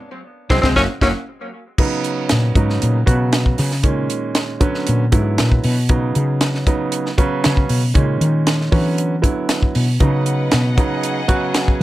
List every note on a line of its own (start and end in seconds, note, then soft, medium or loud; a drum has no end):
0.50 0.60 C2 medium
0.50 0.59 F#3 medium
0.50 0.59 G#3 medium
0.50 0.56 C4 medium
0.50 0.59 C4 medium
0.50 0.58 E4 medium
0.50 kick medium
0.50 snare medium
0.62 0.73 C2 medium
0.62 0.71 G#3 medium
0.62 0.68 C4 medium
0.62 0.71 C4 medium
0.62 0.73 C4 medium
0.62 0.71 E4 medium
0.62 kick medium
0.62 snare medium
0.66 0.73 F#3 medium
0.66 0.73 G#3 medium
0.76 0.86 F#1 medium
0.76 0.85 F#3 medium
0.76 0.85 A#3 medium
0.76 0.85 C#4 medium
0.76 0.82 C#4 medium
0.76 0.85 C#4 medium
0.76 0.85 E4 medium
0.76 0.85 F#4 medium
0.76 kick medium
0.76 snare medium
1.01 1.12 F#1 medium
1.01 1.11 F#3 medium
1.01 1.11 A#3 medium
1.01 1.10 C#4 medium
1.01 1.08 C#4 medium
1.01 1.11 C#4 medium
1.01 1.10 E4 medium
1.01 1.10 F#4 medium
1.01 kick medium
1.01 snare medium
1.78 2.55 C#3 medium
1.78 2.55 F#3 medium
1.78 2.55 B3 medium
1.78 2.55 D#4 medium
1.78 kick medium
1.78 crash medium
2.04 closed hi-hat soft
2.29 2.55 A#2 medium
2.29 snare loud
2.29 closed hi-hat medium
2.56 2.81 G#2 medium
2.56 2.98 C#3 medium
2.56 2.98 F#3 medium
2.56 2.98 B3 medium
2.56 2.98 D#4 medium
2.56 kick loud
2.56 closed hi-hat medium
2.70 snare soft
2.82 3.07 A#2 medium
2.82 closed hi-hat medium
3.06 3.55 B2 medium
3.06 3.69 C#3 medium
3.06 3.69 F#3 medium
3.06 3.69 B3 medium
3.06 3.69 F#4 medium
3.06 kick medium
3.06 closed hi-hat medium
3.33 snare loud
3.33 closed hi-hat medium
3.46 kick medium
3.58 4.07 C#3 medium
3.58 snare soft
3.58 open hi-hat medium
3.71 snare soft
3.83 4.61 A#2 medium
3.83 4.61 D#3 medium
3.83 4.61 G#3 medium
3.83 4.59 C#4 medium
3.83 kick loud
3.83 closed hi-hat medium
4.10 closed hi-hat medium
4.35 snare loud
4.35 closed hi-hat medium
4.60 5.02 D3 medium
4.60 5.03 F#3 medium
4.60 5.03 B3 medium
4.60 5.03 C#4 medium
4.60 kick loud
4.60 closed hi-hat medium
4.75 snare soft
4.87 5.13 A#2 medium
4.87 closed hi-hat medium
5.12 5.38 G#2 medium
5.12 5.74 D3 medium
5.12 5.74 F#3 medium
5.12 5.74 B3 medium
5.12 5.74 E4 medium
5.12 kick medium
5.12 closed hi-hat medium
5.38 5.64 A#2 medium
5.38 snare medium
5.38 closed hi-hat medium
5.52 kick medium
5.64 6.12 B2 medium
5.64 open hi-hat medium
5.89 6.65 C#3 medium
5.89 6.65 F#3 medium
5.89 6.66 B3 medium
5.89 6.66 D#4 medium
5.89 kick loud
5.89 closed hi-hat medium
6.15 6.64 C#3 medium
6.15 closed hi-hat medium
6.41 snare loud
6.41 closed hi-hat medium
6.55 snare soft
6.67 7.08 C#3 medium
6.67 7.08 F#3 medium
6.67 7.09 B3 medium
6.67 7.09 D#4 medium
6.67 kick loud
6.67 closed hi-hat medium
6.92 closed hi-hat medium
7.06 snare soft
7.18 7.80 C#3 medium
7.18 7.80 F#3 medium
7.18 7.80 B3 medium
7.18 7.80 C#4 medium
7.18 kick medium
7.18 closed hi-hat medium
7.44 7.69 C#3 medium
7.44 snare loud
7.44 closed hi-hat medium
7.57 kick medium
7.69 7.95 B2 medium
7.69 open hi-hat medium
7.94 8.72 A#2 medium
7.94 8.20 C#3 medium
7.94 8.72 D#3 medium
7.94 8.72 G#3 medium
7.94 8.70 C#4 medium
7.94 kick loud
7.94 closed hi-hat medium
8.21 8.69 D#3 medium
8.21 closed hi-hat medium
8.47 snare loud
8.47 closed hi-hat medium
8.61 snare soft
8.72 9.14 D3 medium
8.72 9.21 E3 medium
8.72 9.14 F#3 medium
8.72 9.14 B3 medium
8.72 9.14 C#4 medium
8.72 kick loud
8.72 open hi-hat medium
8.98 closed hi-hat medium
9.22 9.85 D3 medium
9.22 9.85 F#3 medium
9.22 9.85 B3 medium
9.22 9.85 E4 medium
9.22 kick medium
9.22 closed hi-hat medium
9.49 snare loud
9.49 closed hi-hat medium
9.63 kick medium
9.75 10.00 B2 medium
9.75 open hi-hat medium
9.99 10.76 C#3 medium
9.99 10.50 C#3 medium
9.99 10.76 F#3 medium
9.99 10.76 B3 medium
9.99 10.76 D#4 medium
9.99 10.77 B4 medium
9.99 11.83 D#5 medium
9.99 11.83 F#5 medium
9.99 kick loud
9.99 closed hi-hat medium
10.26 closed hi-hat medium
10.52 10.78 B2 medium
10.52 snare loud
10.52 closed hi-hat medium
10.77 11.19 C#3 medium
10.77 11.19 F#3 medium
10.77 11.19 B3 medium
10.77 11.19 D#4 medium
10.77 11.83 G#4 medium
10.77 kick loud
10.77 closed hi-hat medium
11.03 closed hi-hat medium
11.28 11.83 C#3 medium
11.28 11.83 F#3 medium
11.28 11.83 B3 medium
11.28 11.83 F#4 medium
11.28 kick medium
11.28 closed hi-hat medium
11.54 snare loud
11.54 closed hi-hat medium
11.68 kick medium